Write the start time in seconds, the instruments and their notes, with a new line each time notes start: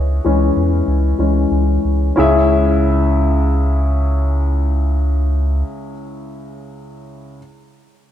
Already playing: sub bass C#2, grand piano E4 C#5
0.25 sub bass C#2, grand piano E3 G#3 C#4
0.56 sub bass E2
0.87 sub bass C#2
1.19 sub bass C#2, grand piano E3 G#3 C#4
1.51 sub bass C#2
1.85 sub bass C#2
2.16 grand piano C#2 C#4 E4 G#4 E5, sub bass C#2